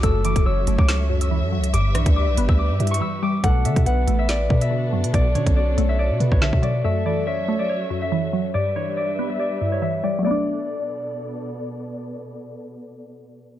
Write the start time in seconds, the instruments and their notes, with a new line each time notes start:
Already playing: string section F#4 A4, harp D6
0.03 808-style bass F#1, synth pluck F#2, string section F#3 E5, soft synth lead A4, harp E6, kick, closed hi-hat
0.25 synth pluck E3, harp D6, closed hi-hat
0.36 808-style bass E1, kick, closed hi-hat
0.46 808-style bass F#1, soft synth lead C#5, harp E6
0.67 808-style bass F#1, synth pluck A3, closed hi-hat
0.78 808-style bass C#2, harp D6, kick
0.88 harp C#6, snare, closed hi-hat
1.10 synth pluck F#2
1.21 harp E6, closed hi-hat
1.31 synth pluck E3
1.42 808-style bass F#2
1.52 synth pluck F#3
1.58 808-style bass C#2
1.64 closed hi-hat
1.73 808-style bass G1, synth pluck G2, string section G3 G4 B4, harp D6, closed hi-hat
1.95 808-style bass B1, synth pluck E3, soft synth lead D5, harp C#6, cross-stick, closed hi-hat
2.06 808-style bass D2, kick, closed hi-hat
2.16 harp D6
2.27 808-style bass B1
2.37 808-style bass G1, synth pluck B3, closed hi-hat
2.49 808-style bass D2, harp E6, kick
2.59 harp D6
2.70 808-style bass G2
2.80 808-style bass G2, synth pluck G2, soft synth lead E5, closed hi-hat
2.87 closed hi-hat
2.91 harp C#6, closed hi-hat
3.01 synth pluck E3, harp E6
3.23 synth pluck G3, harp D6
3.44 808-style bass B1, synth pluck B2, string section B3 D4 F#4 A4, soft synth lead A4, harp F#5, kick, closed hi-hat
3.65 808-style bass D3, synth pluck D3, harp E5, closed hi-hat
3.76 808-style bass B2, kick, closed hi-hat
3.86 808-style bass B1, soft synth lead B4, harp F#5, closed hi-hat
4.07 808-style bass A1, synth pluck A3, closed hi-hat
4.19 harp E5
4.29 harp D5, snare, closed hi-hat
4.49 synth pluck B2, 808-style bass B2, kick
4.61 harp E5, closed hi-hat
4.71 synth pluck D3
4.93 808-style bass F#2, synth pluck F#3
5.04 808-style bass B2, closed hi-hat
5.13 808-style bass B1, synth pluck B2, harp D5, kick, closed hi-hat
5.35 808-style bass B2, synth pluck D3, harp C#5, soft synth lead C#5, closed hi-hat
5.46 808-style bass B1, kick, closed hi-hat
5.56 harp D5
5.78 808-style bass B1, synth pluck A3, closed hi-hat
5.89 harp E5
5.99 harp D5
6.10 808-style bass B2
6.20 synth pluck B2, 808-style bass B2, soft synth lead B4, closed hi-hat
6.31 808-style bass B1, harp C#5, kick
6.41 synth pluck D3, harp E5, snare, closed hi-hat
6.53 808-style bass B2, kick
6.62 synth pluck F#3, harp D5, closed hi-hat
6.84 synth pluck F#2, string section F#3 E5, soft synth lead A4, harp E5
7.06 synth pluck E3, harp D5
7.27 soft synth lead C#5, harp E5
7.48 synth pluck A3
7.59 harp D5
7.69 harp C#5
7.90 synth pluck F#2
8.02 harp E5
8.12 synth pluck E3
8.33 synth pluck F#3
8.54 synth pluck G2, string section G3 G4 B4 E5, harp D5
8.76 synth pluck E3, harp C#5, soft synth lead D5
8.97 harp D5
9.19 synth pluck B3
9.29 harp E5
9.39 harp D5
9.61 synth pluck G2, soft synth lead E5
9.72 harp C#5
9.82 synth pluck E3, harp E5
10.04 synth pluck G3, harp D5
10.19 synth pluck F#3 A3
10.24 string section B2 B3 A4 D5, synth pluck B3, harp D5, soft synth lead D5
10.31 synth pluck D4